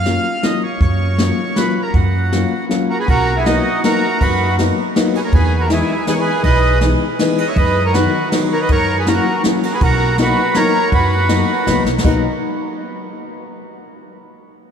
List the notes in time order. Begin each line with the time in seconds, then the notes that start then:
Already playing: F#2 F5
0.06 F#3 A#3 C#4 F4, snare, closed hi-hat
0.43 F#3 A#3 C#4 F4 D#5, snare, closed hi-hat
0.63 C#5
0.81 F#2 C#5, kick, closed hi-hat
1.18 F#3 A#3 C#4 F4, snare, closed hi-hat
1.56 F#3 A#3 C#4 F4 B4, snare, closed hi-hat
1.82 A#4
1.94 F#2 F#4, kick, closed hi-hat
2.32 F#3 A#3 C#4 F4, snare, closed hi-hat
2.69 F#3 A#3 C#4 F4, snare, closed hi-hat
2.90 F#4 A#4
2.99 G#4 B4
3.08 B1 F#4 A#4, kick, ride
3.37 E4 G#4
3.45 F#3 A#3 B3 D#4 F#4, snare, ride
3.84 F#3 A#3 B3 D#4 F#4 A#4, snare, ride
4.21 F#2 F#4 B4, kick, ride
4.59 F#3 A#3 B3 D#4, snare, ride
4.96 F#3 A#3 B3 D#4, snare, ride
5.15 G#4 B4, ride
5.24 A#4 C#5
5.32 E2 G#4 B4, kick, ride
5.60 F#4 A#4
5.69 E3 G#3 B3 D#4 E4 G#4, snare, ride
6.07 E3 G#3 B3 D#4 G#4 B4, snare, ride
6.12 A#4 C#5
6.20 G#4 B4
6.43 B1 B4 D#5, kick, ride
6.81 E3 G#3 B3 D#4, snare, ride
7.19 E3 G#3 B3 D#4, snare, ride
7.38 B4 D#5, ride
7.48 C#5 E5
7.56 F#2 B4 D#5, kick, ride
7.85 A#4 C#5
7.94 D#3 F#3 B3 D#4 F#4 B4, snare, ride
8.32 D#3 F#3 B3 D#4, snare, ride
8.51 A#4 C#5
8.61 B4 D#5
8.69 F#2 A#4 C#5, kick, ride
8.99 G#4 B4
9.07 F#3 A#3 C#4 E4 F#4 A#4, snare, ride
9.44 F#3 A#3 C#4 E4, snare, ride
9.62 F#4 A#4, ride
9.73 G#4 B4
9.80 B1 F#4 A#4, kick, ride
10.18 F#3 A#3 B3 D#4 F#4 B4, snare, ride
10.22 F#4
10.55 F#3 A#3 B3 D#4 A#4 C#5, snare, ride
10.92 F#2 F#4 B4, kick, ride
11.29 F#3 A#3 B3 D#4, snare, ride
11.67 C#2 F#3 A#3 B3 D#4, snare, ride
11.85 B1, snare
11.98 snare
12.04 B1 F#3 A#3 B3 D#4 F#4, kick, crash